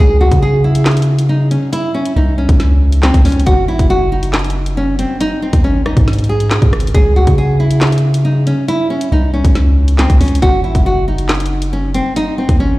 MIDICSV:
0, 0, Header, 1, 4, 480
1, 0, Start_track
1, 0, Key_signature, 4, "minor"
1, 0, Tempo, 434783
1, 1908, Time_signature, 4, 2, 24, 8
1, 14118, End_track
2, 0, Start_track
2, 0, Title_t, "Nylon-string guitar"
2, 0, Program_c, 0, 24
2, 0, Note_on_c, 0, 68, 103
2, 186, Note_off_c, 0, 68, 0
2, 228, Note_on_c, 0, 66, 78
2, 427, Note_off_c, 0, 66, 0
2, 468, Note_on_c, 0, 68, 89
2, 667, Note_off_c, 0, 68, 0
2, 709, Note_on_c, 0, 64, 88
2, 1385, Note_off_c, 0, 64, 0
2, 1426, Note_on_c, 0, 63, 80
2, 1626, Note_off_c, 0, 63, 0
2, 1667, Note_on_c, 0, 61, 71
2, 1867, Note_off_c, 0, 61, 0
2, 1905, Note_on_c, 0, 64, 100
2, 2106, Note_off_c, 0, 64, 0
2, 2147, Note_on_c, 0, 61, 80
2, 2347, Note_off_c, 0, 61, 0
2, 2389, Note_on_c, 0, 63, 80
2, 2588, Note_off_c, 0, 63, 0
2, 2627, Note_on_c, 0, 61, 72
2, 3304, Note_off_c, 0, 61, 0
2, 3346, Note_on_c, 0, 60, 94
2, 3546, Note_off_c, 0, 60, 0
2, 3586, Note_on_c, 0, 61, 87
2, 3786, Note_off_c, 0, 61, 0
2, 3823, Note_on_c, 0, 66, 103
2, 4025, Note_off_c, 0, 66, 0
2, 4065, Note_on_c, 0, 64, 87
2, 4266, Note_off_c, 0, 64, 0
2, 4305, Note_on_c, 0, 66, 93
2, 4506, Note_off_c, 0, 66, 0
2, 4548, Note_on_c, 0, 63, 85
2, 5225, Note_off_c, 0, 63, 0
2, 5268, Note_on_c, 0, 61, 88
2, 5467, Note_off_c, 0, 61, 0
2, 5508, Note_on_c, 0, 60, 79
2, 5707, Note_off_c, 0, 60, 0
2, 5748, Note_on_c, 0, 63, 108
2, 5947, Note_off_c, 0, 63, 0
2, 5988, Note_on_c, 0, 60, 75
2, 6187, Note_off_c, 0, 60, 0
2, 6227, Note_on_c, 0, 61, 86
2, 6427, Note_off_c, 0, 61, 0
2, 6466, Note_on_c, 0, 63, 80
2, 6918, Note_off_c, 0, 63, 0
2, 6948, Note_on_c, 0, 68, 75
2, 7625, Note_off_c, 0, 68, 0
2, 7667, Note_on_c, 0, 68, 104
2, 7867, Note_off_c, 0, 68, 0
2, 7906, Note_on_c, 0, 66, 80
2, 8106, Note_off_c, 0, 66, 0
2, 8147, Note_on_c, 0, 68, 90
2, 8347, Note_off_c, 0, 68, 0
2, 8388, Note_on_c, 0, 64, 87
2, 9065, Note_off_c, 0, 64, 0
2, 9105, Note_on_c, 0, 63, 79
2, 9306, Note_off_c, 0, 63, 0
2, 9348, Note_on_c, 0, 61, 74
2, 9547, Note_off_c, 0, 61, 0
2, 9586, Note_on_c, 0, 64, 98
2, 9786, Note_off_c, 0, 64, 0
2, 9827, Note_on_c, 0, 61, 79
2, 10027, Note_off_c, 0, 61, 0
2, 10070, Note_on_c, 0, 63, 80
2, 10269, Note_off_c, 0, 63, 0
2, 10307, Note_on_c, 0, 61, 72
2, 10984, Note_off_c, 0, 61, 0
2, 11028, Note_on_c, 0, 60, 90
2, 11227, Note_off_c, 0, 60, 0
2, 11267, Note_on_c, 0, 61, 84
2, 11467, Note_off_c, 0, 61, 0
2, 11506, Note_on_c, 0, 66, 107
2, 11706, Note_off_c, 0, 66, 0
2, 11747, Note_on_c, 0, 64, 82
2, 11947, Note_off_c, 0, 64, 0
2, 11990, Note_on_c, 0, 66, 95
2, 12188, Note_off_c, 0, 66, 0
2, 12231, Note_on_c, 0, 63, 81
2, 12906, Note_off_c, 0, 63, 0
2, 12948, Note_on_c, 0, 61, 89
2, 13147, Note_off_c, 0, 61, 0
2, 13186, Note_on_c, 0, 60, 78
2, 13386, Note_off_c, 0, 60, 0
2, 13429, Note_on_c, 0, 63, 108
2, 13628, Note_off_c, 0, 63, 0
2, 13669, Note_on_c, 0, 60, 72
2, 13868, Note_off_c, 0, 60, 0
2, 13909, Note_on_c, 0, 61, 81
2, 14108, Note_off_c, 0, 61, 0
2, 14118, End_track
3, 0, Start_track
3, 0, Title_t, "808-style bass"
3, 0, Program_c, 1, 38
3, 0, Note_on_c, 1, 37, 113
3, 334, Note_off_c, 1, 37, 0
3, 348, Note_on_c, 1, 49, 102
3, 1744, Note_off_c, 1, 49, 0
3, 2388, Note_on_c, 1, 36, 109
3, 2734, Note_off_c, 1, 36, 0
3, 2748, Note_on_c, 1, 37, 102
3, 3439, Note_off_c, 1, 37, 0
3, 3468, Note_on_c, 1, 37, 102
3, 3581, Note_off_c, 1, 37, 0
3, 3587, Note_on_c, 1, 37, 108
3, 3818, Note_off_c, 1, 37, 0
3, 3827, Note_on_c, 1, 30, 109
3, 4066, Note_on_c, 1, 33, 100
3, 4082, Note_off_c, 1, 30, 0
3, 4181, Note_off_c, 1, 33, 0
3, 4187, Note_on_c, 1, 30, 103
3, 5583, Note_off_c, 1, 30, 0
3, 6108, Note_on_c, 1, 39, 106
3, 6223, Note_off_c, 1, 39, 0
3, 6228, Note_on_c, 1, 32, 110
3, 6574, Note_off_c, 1, 32, 0
3, 6587, Note_on_c, 1, 44, 99
3, 7279, Note_off_c, 1, 44, 0
3, 7307, Note_on_c, 1, 44, 103
3, 7423, Note_off_c, 1, 44, 0
3, 7428, Note_on_c, 1, 32, 110
3, 7658, Note_off_c, 1, 32, 0
3, 7668, Note_on_c, 1, 37, 113
3, 8014, Note_off_c, 1, 37, 0
3, 8028, Note_on_c, 1, 49, 104
3, 9424, Note_off_c, 1, 49, 0
3, 10068, Note_on_c, 1, 36, 107
3, 10414, Note_off_c, 1, 36, 0
3, 10428, Note_on_c, 1, 37, 100
3, 11119, Note_off_c, 1, 37, 0
3, 11148, Note_on_c, 1, 37, 105
3, 11261, Note_off_c, 1, 37, 0
3, 11267, Note_on_c, 1, 37, 106
3, 11498, Note_off_c, 1, 37, 0
3, 11508, Note_on_c, 1, 30, 105
3, 11747, Note_on_c, 1, 33, 98
3, 11764, Note_off_c, 1, 30, 0
3, 11862, Note_off_c, 1, 33, 0
3, 11868, Note_on_c, 1, 30, 103
3, 13264, Note_off_c, 1, 30, 0
3, 13788, Note_on_c, 1, 39, 106
3, 13900, Note_off_c, 1, 39, 0
3, 13907, Note_on_c, 1, 32, 111
3, 14118, Note_off_c, 1, 32, 0
3, 14118, End_track
4, 0, Start_track
4, 0, Title_t, "Drums"
4, 348, Note_on_c, 9, 36, 95
4, 348, Note_on_c, 9, 42, 91
4, 458, Note_off_c, 9, 36, 0
4, 458, Note_off_c, 9, 42, 0
4, 828, Note_on_c, 9, 42, 83
4, 939, Note_off_c, 9, 42, 0
4, 945, Note_on_c, 9, 39, 93
4, 948, Note_on_c, 9, 38, 120
4, 948, Note_on_c, 9, 42, 45
4, 1009, Note_off_c, 9, 42, 0
4, 1009, Note_on_c, 9, 42, 54
4, 1056, Note_off_c, 9, 39, 0
4, 1058, Note_off_c, 9, 38, 0
4, 1068, Note_off_c, 9, 42, 0
4, 1068, Note_on_c, 9, 42, 63
4, 1128, Note_off_c, 9, 42, 0
4, 1128, Note_on_c, 9, 42, 74
4, 1239, Note_off_c, 9, 42, 0
4, 1309, Note_on_c, 9, 42, 79
4, 1419, Note_off_c, 9, 42, 0
4, 1668, Note_on_c, 9, 42, 81
4, 1779, Note_off_c, 9, 42, 0
4, 1909, Note_on_c, 9, 42, 78
4, 2019, Note_off_c, 9, 42, 0
4, 2269, Note_on_c, 9, 42, 91
4, 2379, Note_off_c, 9, 42, 0
4, 2748, Note_on_c, 9, 36, 105
4, 2748, Note_on_c, 9, 42, 82
4, 2858, Note_off_c, 9, 36, 0
4, 2859, Note_off_c, 9, 42, 0
4, 2868, Note_on_c, 9, 38, 68
4, 2869, Note_on_c, 9, 42, 69
4, 2979, Note_off_c, 9, 38, 0
4, 2979, Note_off_c, 9, 42, 0
4, 3229, Note_on_c, 9, 42, 77
4, 3339, Note_off_c, 9, 42, 0
4, 3346, Note_on_c, 9, 39, 88
4, 3348, Note_on_c, 9, 38, 109
4, 3456, Note_off_c, 9, 39, 0
4, 3459, Note_off_c, 9, 38, 0
4, 3468, Note_on_c, 9, 36, 106
4, 3468, Note_on_c, 9, 42, 77
4, 3578, Note_off_c, 9, 36, 0
4, 3579, Note_off_c, 9, 42, 0
4, 3588, Note_on_c, 9, 42, 47
4, 3588, Note_on_c, 9, 46, 59
4, 3667, Note_off_c, 9, 42, 0
4, 3667, Note_on_c, 9, 42, 61
4, 3699, Note_off_c, 9, 46, 0
4, 3748, Note_off_c, 9, 42, 0
4, 3748, Note_on_c, 9, 42, 72
4, 3828, Note_off_c, 9, 42, 0
4, 3828, Note_on_c, 9, 36, 111
4, 3828, Note_on_c, 9, 42, 80
4, 3938, Note_off_c, 9, 36, 0
4, 3938, Note_off_c, 9, 42, 0
4, 4187, Note_on_c, 9, 36, 99
4, 4187, Note_on_c, 9, 42, 89
4, 4298, Note_off_c, 9, 36, 0
4, 4298, Note_off_c, 9, 42, 0
4, 4667, Note_on_c, 9, 42, 85
4, 4778, Note_off_c, 9, 42, 0
4, 4785, Note_on_c, 9, 39, 92
4, 4787, Note_on_c, 9, 38, 120
4, 4787, Note_on_c, 9, 42, 44
4, 4848, Note_off_c, 9, 42, 0
4, 4848, Note_on_c, 9, 42, 54
4, 4895, Note_off_c, 9, 39, 0
4, 4897, Note_off_c, 9, 38, 0
4, 4907, Note_off_c, 9, 42, 0
4, 4907, Note_on_c, 9, 42, 64
4, 4968, Note_off_c, 9, 42, 0
4, 4968, Note_on_c, 9, 42, 71
4, 5078, Note_off_c, 9, 42, 0
4, 5147, Note_on_c, 9, 42, 80
4, 5258, Note_off_c, 9, 42, 0
4, 5508, Note_on_c, 9, 42, 82
4, 5618, Note_off_c, 9, 42, 0
4, 5747, Note_on_c, 9, 42, 78
4, 5857, Note_off_c, 9, 42, 0
4, 6107, Note_on_c, 9, 36, 102
4, 6107, Note_on_c, 9, 42, 94
4, 6217, Note_off_c, 9, 42, 0
4, 6218, Note_off_c, 9, 36, 0
4, 6468, Note_on_c, 9, 37, 97
4, 6578, Note_off_c, 9, 37, 0
4, 6587, Note_on_c, 9, 36, 104
4, 6588, Note_on_c, 9, 42, 83
4, 6698, Note_off_c, 9, 36, 0
4, 6698, Note_off_c, 9, 42, 0
4, 6708, Note_on_c, 9, 38, 68
4, 6709, Note_on_c, 9, 42, 61
4, 6769, Note_off_c, 9, 42, 0
4, 6769, Note_on_c, 9, 42, 61
4, 6819, Note_off_c, 9, 38, 0
4, 6828, Note_off_c, 9, 42, 0
4, 6828, Note_on_c, 9, 42, 59
4, 6888, Note_off_c, 9, 42, 0
4, 6888, Note_on_c, 9, 42, 58
4, 6998, Note_off_c, 9, 42, 0
4, 7068, Note_on_c, 9, 42, 80
4, 7178, Note_off_c, 9, 42, 0
4, 7185, Note_on_c, 9, 39, 87
4, 7188, Note_on_c, 9, 38, 106
4, 7296, Note_off_c, 9, 39, 0
4, 7298, Note_off_c, 9, 38, 0
4, 7308, Note_on_c, 9, 36, 106
4, 7308, Note_on_c, 9, 42, 74
4, 7418, Note_off_c, 9, 36, 0
4, 7419, Note_off_c, 9, 42, 0
4, 7428, Note_on_c, 9, 37, 98
4, 7429, Note_on_c, 9, 42, 45
4, 7509, Note_off_c, 9, 42, 0
4, 7509, Note_on_c, 9, 42, 62
4, 7539, Note_off_c, 9, 37, 0
4, 7588, Note_off_c, 9, 42, 0
4, 7588, Note_on_c, 9, 42, 76
4, 7667, Note_off_c, 9, 42, 0
4, 7667, Note_on_c, 9, 42, 77
4, 7668, Note_on_c, 9, 36, 107
4, 7778, Note_off_c, 9, 36, 0
4, 7778, Note_off_c, 9, 42, 0
4, 8027, Note_on_c, 9, 42, 92
4, 8028, Note_on_c, 9, 36, 101
4, 8137, Note_off_c, 9, 42, 0
4, 8138, Note_off_c, 9, 36, 0
4, 8507, Note_on_c, 9, 42, 82
4, 8618, Note_off_c, 9, 42, 0
4, 8625, Note_on_c, 9, 39, 93
4, 8627, Note_on_c, 9, 38, 118
4, 8628, Note_on_c, 9, 42, 43
4, 8688, Note_off_c, 9, 42, 0
4, 8688, Note_on_c, 9, 42, 55
4, 8735, Note_off_c, 9, 39, 0
4, 8738, Note_off_c, 9, 38, 0
4, 8748, Note_off_c, 9, 42, 0
4, 8748, Note_on_c, 9, 42, 63
4, 8808, Note_off_c, 9, 42, 0
4, 8808, Note_on_c, 9, 42, 72
4, 8918, Note_off_c, 9, 42, 0
4, 8988, Note_on_c, 9, 42, 82
4, 9098, Note_off_c, 9, 42, 0
4, 9348, Note_on_c, 9, 42, 80
4, 9459, Note_off_c, 9, 42, 0
4, 9588, Note_on_c, 9, 42, 78
4, 9698, Note_off_c, 9, 42, 0
4, 9948, Note_on_c, 9, 42, 88
4, 10059, Note_off_c, 9, 42, 0
4, 10428, Note_on_c, 9, 36, 104
4, 10428, Note_on_c, 9, 42, 85
4, 10538, Note_off_c, 9, 36, 0
4, 10538, Note_off_c, 9, 42, 0
4, 10548, Note_on_c, 9, 38, 70
4, 10548, Note_on_c, 9, 42, 72
4, 10658, Note_off_c, 9, 38, 0
4, 10658, Note_off_c, 9, 42, 0
4, 10907, Note_on_c, 9, 42, 79
4, 11017, Note_off_c, 9, 42, 0
4, 11025, Note_on_c, 9, 39, 84
4, 11027, Note_on_c, 9, 38, 104
4, 11135, Note_off_c, 9, 39, 0
4, 11138, Note_off_c, 9, 38, 0
4, 11148, Note_on_c, 9, 36, 104
4, 11148, Note_on_c, 9, 42, 75
4, 11258, Note_off_c, 9, 36, 0
4, 11258, Note_off_c, 9, 42, 0
4, 11268, Note_on_c, 9, 42, 46
4, 11268, Note_on_c, 9, 46, 60
4, 11348, Note_off_c, 9, 42, 0
4, 11348, Note_on_c, 9, 42, 59
4, 11378, Note_off_c, 9, 46, 0
4, 11427, Note_off_c, 9, 42, 0
4, 11427, Note_on_c, 9, 42, 74
4, 11508, Note_off_c, 9, 42, 0
4, 11508, Note_on_c, 9, 36, 109
4, 11508, Note_on_c, 9, 42, 81
4, 11618, Note_off_c, 9, 36, 0
4, 11618, Note_off_c, 9, 42, 0
4, 11867, Note_on_c, 9, 42, 89
4, 11868, Note_on_c, 9, 36, 98
4, 11978, Note_off_c, 9, 36, 0
4, 11978, Note_off_c, 9, 42, 0
4, 12347, Note_on_c, 9, 42, 82
4, 12458, Note_off_c, 9, 42, 0
4, 12464, Note_on_c, 9, 39, 93
4, 12467, Note_on_c, 9, 38, 119
4, 12467, Note_on_c, 9, 42, 44
4, 12527, Note_off_c, 9, 42, 0
4, 12527, Note_on_c, 9, 42, 53
4, 12575, Note_off_c, 9, 39, 0
4, 12577, Note_off_c, 9, 38, 0
4, 12587, Note_off_c, 9, 42, 0
4, 12587, Note_on_c, 9, 42, 63
4, 12648, Note_off_c, 9, 42, 0
4, 12648, Note_on_c, 9, 42, 73
4, 12758, Note_off_c, 9, 42, 0
4, 12827, Note_on_c, 9, 42, 80
4, 12937, Note_off_c, 9, 42, 0
4, 13187, Note_on_c, 9, 42, 84
4, 13297, Note_off_c, 9, 42, 0
4, 13428, Note_on_c, 9, 42, 76
4, 13538, Note_off_c, 9, 42, 0
4, 13788, Note_on_c, 9, 36, 95
4, 13788, Note_on_c, 9, 42, 93
4, 13898, Note_off_c, 9, 36, 0
4, 13898, Note_off_c, 9, 42, 0
4, 14118, End_track
0, 0, End_of_file